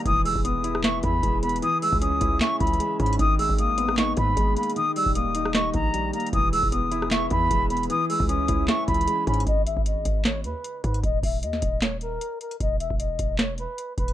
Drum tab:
HH |x-----o-----x-----x-----x-----x-----x-----x-x-x-|x-----o-----x-----x-----x-----x-x-x-x-----x-x-x-|x-----o-----x-----x-----x-----x-----x-----x-x-x-|x-----o-----x-----x-----x-----x-----x-----x-x-x-|
CP |------------------------x-----------------------|------------------------x-----------------------|------------------------x-----------------------|------------------------x-----------------------|
SD |---------------------r--o-----------------------|------------------------o-----------------------|---------------------r--o-----------------------|---------------------r--o-----------------------|
BD |o--------o--------------------o-----o-----------|---------o--------o-----------o-----------o-----|o--------o--------------------o-----o-----------|---------o--------------------o-----------------|

HH |x-----o-----x-----x-----x-----x-----x-----x-x-x-|x-----o-----x-----x-----x-----x-x-x-x-----x-x-x-|x-----x-----x-----x-----x-----x-----x-----x--x--|x-----o-----x-----x-----x-----x-----x-----x--x--|
CP |------------------------x-----------------------|------------------------x-----------------------|------------------------x-----------------------|------------------------x-----------------------|
SD |---------------------r--o-----------------------|------------------------o-----------------------|------------------------o-----------------------|---------------o--------o-----------------------|
BD |o--------o--------------------o-----o-----------|---------o--------o-----------o-----------o-----|o--------o--------o-----------------------o-----|o-----o-----------o-----------------------------|

HH |x-----x-----x-----x-----x-----x-----x-----x--x--|
CP |------------------------x-----------------------|
SD |------------------------o-----------------------|
BD |o--------o--------o-----------------------o-----|